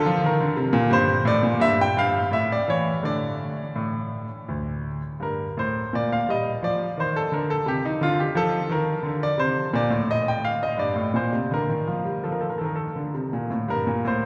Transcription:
Already playing: D4 A4
0.06 F3
0.24 D#3 A#4
0.41 D3
0.57 C3
0.73 A#2
0.90 G2 G4 C5
1.25 A2 D5
1.43 A#2
1.60 G2 E5
1.81 G5
1.97 G2 F5
2.31 A2 E5
2.52 D5
2.68 E3 C#5
3.03 D3 A3 D4 D5
3.76 A2
4.48 D2
5.20 G2 A#4
5.57 A2 C5
5.93 A#2 D5
6.12 F5
6.28 G3 D#5
6.62 F3 D5
6.98 D#3 C5
7.16 A4
7.32 D3 A#4
7.50 A4
7.66 C3 G4
7.85 D#4
8.01 D3 F4
8.20 G4
8.35 F3 A4
8.69 D#3 A#4
9.03 D3
9.23 D5
9.38 C3 C5
9.73 A#2 D5
9.90 A2
10.11 D#5
10.28 G5
10.45 F5
10.63 D#5
10.77 G2 D5
10.96 A2
11.14 A#2 C5
11.33 C3
11.51 D3 A#4
11.69 D#3
11.87 F3
12.05 G3
12.24 F3 A4
12.32 A#4
12.41 A4
12.50 A#4
12.58 D#3 A4
12.65 A#4
12.76 A4
12.96 D3
13.14 C3
13.33 A#2
13.50 A2
13.68 G2 A#4
13.87 A#2
14.05 A2 C5

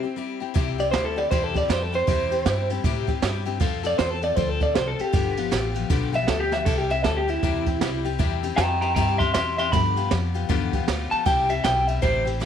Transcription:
Already playing: C4
0.03 C4 E4 G4
0.16 G3 C4 E4 G4
0.40 C4 E4 G4
0.54 C2 C3 G3 C4 E4 G4, kick, ride
0.78 C4 E4 G4 D5, ride
0.91 D2 G3 C4 E4 G4 C5, snare, ride
1.05 A4
1.16 C4 E4 G4 D5, ride
1.31 E2 C3 G3 C4 E4 G4 C5, kick, ride
1.44 A4
1.54 C4 E4 G4 D5, kick, ride
1.68 F2 G3 C4 E4 G4 C5, snare, ride
1.83 A4
1.92 C4 E4 G4 C5, ride
2.07 E2 C3 G3 C4 E4 G4, kick, ride
2.31 C4 E4 G4, ride
2.46 G2 G3 C4 E4 G4, snare, ride
2.70 C4 E4 G4, ride
2.84 A2 C3 G3 C4 E4 G4, kick, ride
3.07 C4 E4 G4, kick, ride
3.22 G2 G3 C4 E4 G4, snare, ride
3.46 C4 E4 G4, ride
3.60 F2 F3 C4 F4 A4, kick, ride
3.83 C4 F4 A4 D5, ride
3.98 E2 F3 C4 F4 A4 C5, snare, ride
4.11 A4
4.21 C4 F4 A4 D5, ride
4.36 D2 F3 C4 F4 A4 C5, kick, ride
4.49 A4
4.60 C4 F4 A4 D5, kick, ride
4.75 C2 F3 C4 F4 A4 C5, snare, ride
4.88 A4
4.99 C4 F4 G4 A4, muted upright bass stroke, ride
5.13 G1 G2 D3 F3 B3 F4 G4, kick, ride
5.37 F3 B3 F4 G4, ride
5.51 A1 F3 B3 F4 G4, snare, ride
5.75 F3 B3 F4 G4, ride
5.90 B1 G2 D3 F3 B3 F4 G4, kick, ride
6.12 F3 B3 F4 G4 E5, ride
6.27 D2 F3 B3 F4 G4 A4, snare, ride
6.40 G4
6.51 F3 B3 F4 G4 E5, snare
6.65 C2 C3 G3 C4 E4 G4 A4, kick, crash, ride
6.78 G4
6.90 C4 E4 G4 E5, ride
7.04 D2 G3 C4 E4 G4 A4, snare, ride
7.17 G4
7.28 C4 E4 G4, ride
7.43 E2 C3 G3 C4 E4 G4, kick, ride
7.66 C4 E4 G4, kick, ride
7.81 C2 G3 C4 E4 G4, snare, ride
8.05 C4 E4 G4, ride
8.19 E2 C3 G3 C4 E4 G4, kick, ride
8.43 C4 E4 G4, ride
8.56 F2 G3 C4 E4 G4 G5 A#5, snare, ride
8.81 C4 E4 G4 G5 A#5, ride
8.95 G2 C3 G3 C4 E4 G4 G5 A#5, kick, ride
9.18 E4 G4 E5 C6, kick, ride
9.22 C4
9.34 E2 G3 C4 E4 G4 E5 C6, snare, ride
9.58 C4 E4 G4 E5 C6, ride
9.72 G2 D3 F3 B3 F4 G4 B5, kick, ride
9.96 F3 B3 F4 G4, ride
10.11 F2 F3 B3 F4 G4, snare, ride
10.34 F3 B3 F4 G4, ride
10.49 E2 G2 D3 F3 B3 F4 G4, kick, ride
10.73 F3 B3 F4 G4, kick, ride
10.87 D2 F3 B3 F4 G4, snare, ride
11.11 F3 B3 F4 G4 A5, muted upright bass stroke, ride
11.25 C2 C3 G3 C4 E4 G4 G5, kick, ride
11.49 C4 E4 G4 E5, ride
11.64 B1 G3 C4 E4 G4 G5, snare, ride
11.87 C4 E4 G4 E5, ride
12.02 A1 C3 G3 C4 E4 G4 C5, kick, ride
12.25 C4 E4 G4, ride
12.40 G1 G3 C4 E4 G4, snare

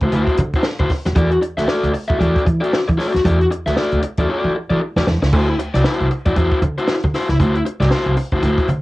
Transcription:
0.01 D2 E4 F#4 C5, kick, closed hi-hat
0.12 D2 E4 F#4 C5, closed hi-hat
0.27 kick, closed hi-hat
0.37 D3, muted overdriven electric guitar stroke, closed hi-hat
0.54 E4 F#4 C5, kick, closed hi-hat
0.63 muted overdriven electric guitar stroke, snare
0.78 D3 E4 F#4 C5, kick, closed hi-hat
0.90 muted overdriven electric guitar stroke, kick, snare, open hi-hat
1.05 D#2, muted overdriven electric guitar stroke, snare, closed hi-hat
1.16 E2 F#4 A4 D5, kick, closed hi-hat
1.31 muted overdriven electric guitar stroke, closed hi-hat
1.41 muted overdriven electric guitar stroke, closed hi-hat
1.58 D2 F#4 A4 E5, snare, closed hi-hat
1.67 F#4 A4 D5, snare
1.83 D2, closed hi-hat
1.93 muted overdriven electric guitar stroke, open hi-hat
2.08 E2 F#4 A4 E5, kick, closed hi-hat
2.18 E2 F#4 A4 D5, kick, closed hi-hat
2.36 kick, closed hi-hat
2.45 E3, muted overdriven electric guitar stroke, kick, closed hi-hat
2.61 F#4 A4 D5, closed hi-hat
2.73 snare
2.88 E3, muted overdriven electric guitar stroke, kick, closed hi-hat
2.98 F#4 A4 D5, snare, open hi-hat
3.13 D#2, muted overdriven electric guitar stroke, snare, closed hi-hat
3.24 E2 F#4 A4 D5, kick, closed hi-hat
3.40 muted overdriven electric guitar stroke, closed hi-hat
3.50 muted overdriven electric guitar stroke, closed hi-hat
3.66 D2 F#4 A4 E5, snare, closed hi-hat
3.76 F#4 A4 D5, snare
3.91 D2, closed hi-hat
4.02 muted overdriven electric guitar stroke, closed hi-hat
4.17 E2 F#4 A4 D5, kick, closed hi-hat
4.29 F#4 A4 D5
4.44 E3
4.55 muted overdriven electric guitar stroke
4.70 E3 F#4 A4 D5
4.81 muted overdriven electric guitar stroke
4.96 E2 F#4 A4 D5, snare
5.07 E2, muted overdriven electric guitar stroke, snare
5.22 C#2, muted overdriven electric guitar stroke, snare
5.32 D2 E4 F#4 C5, kick, crash
5.48 muted overdriven electric guitar stroke
5.59 muted overdriven electric guitar stroke, closed hi-hat
5.74 C2 E4 F#4 D5, snare, closed hi-hat
5.84 E4 F#4 C5, snare
6.00 C2
6.11 muted overdriven electric guitar stroke, closed hi-hat
6.25 E2 E4 F#4 D5, kick, closed hi-hat
6.36 E2 E4 F#4 C5, kick, closed hi-hat
6.51 kick
6.62 D3, muted overdriven electric guitar stroke, kick, closed hi-hat
6.78 E4 F#4 C5, closed hi-hat
6.87 snare
7.02 D3, muted overdriven electric guitar stroke, kick, closed hi-hat
7.14 E4 F#4 C5, snare, open hi-hat
7.29 C#2, muted overdriven electric guitar stroke, snare, closed hi-hat
7.39 D2 E4 F#4 C5, kick, closed hi-hat
7.55 muted overdriven electric guitar stroke, closed hi-hat
7.65 muted overdriven electric guitar stroke, closed hi-hat
7.80 C2 E4 F#4 D5, snare, closed hi-hat
7.90 E4 F#4 C5, snare
8.06 C2
8.17 muted overdriven electric guitar stroke, open hi-hat
8.32 D2 E4 F#4 C5, kick, closed hi-hat
8.43 D2 E4 F#4 C5, closed hi-hat
8.58 kick, closed hi-hat
8.68 D3, muted overdriven electric guitar stroke, closed hi-hat

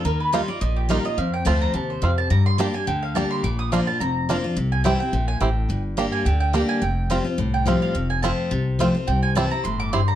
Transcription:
0.05 D#2 D#3 A#4
0.20 B4
0.32 D#3 G3 A#3 D#4 F4 C5
0.48 D#4 F4 D5
0.61 A#1 A#2 D#5
0.76 G4
0.89 D#3 G3 A#3 D#4 F4 A#4
1.05 D#4 F4 D#5
1.17 F2 F5
1.34 G5
1.45 D2 F3 A3 C4 F4 A5
1.61 A#5
1.74 D#2 C3 A5
1.90 C5
2.02 F2 C4 F4 F5
2.18 A5
2.30 G2 A#5
2.46 C6
2.58 G3 A#3 D4 G4 A5
2.74 D4 G4 G#5
2.87 D2 D3 G5
3.03 F5
3.15 G3 A#3 D4 G4 A5
3.31 C6
3.43 A#1 A#2 D6
3.59 D#6
3.72 F3 A#3 D4 F4 C6
3.87 D4 F4 A5
4.00 F1 F2 A#5
4.29 F3 A#3 D4 F4
4.44 D4 F4
4.57 C2 C3
4.72 G#5
4.84 E3 G3 C4 E4 G4 G5
5.00 C4 E4 G5
5.12 A#1 A#2
5.28 G#5
5.40 A1 A2 C4 E4 G4 G5
5.69 G1 G2
5.97 G3 A#3 D4 G4
6.12 G#5
6.25 D2 D3 G5
6.40 G5
6.53 G3 A#3 D4 G4
6.69 G#5
6.82 F1 F2 G5
7.10 F3 G3 C4 F4
7.25 C4 F4
7.38 C2 A2
7.54 G5
7.66 F3 G3 C4 F4 F5
7.82 F5
7.95 F1 F2
8.10 G#5
8.22 F3 A3 C4 F4 A5
8.51 C2 C3
8.79 F3 A3 C4 F4
8.95 C4 F4
9.07 C2 C3 G5
9.23 G#5
9.35 E3 G3 C4 E4 G4 A5
9.51 C4 E4 A#5
9.64 G1 A2 C6
9.80 D6
9.93 G2 C4 E4 G4 C6
10.08 A#5

